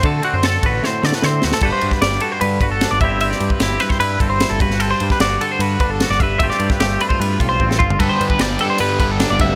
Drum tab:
CC |----------------|x---------------|----------------|----------------|
RD |x-x-x-x---------|--x-x-x-x-x-x-x-|x-x-x-x-x-x-x-x-|x-x-x-x-x-x-x-x-|
SD |----o---o-ooo-oo|---ooo------o---|-o--o-oo----o--o|---oo-------oo--|
FT |----------------|----------------|----------------|----------------|
BD |o-----o---------|o--o------o---o-|---o---o--o---o-|---o------o---o-|

CC |----------------|----------------|
RD |x-x-x-x-x-x-----|x-x-x-x-x-x-x-x-|
SD |-o-oo--------o--|----o-------o---|
FT |---------------o|----------------|
BD |o--o---o--o-o-o-|o--o------o---o-|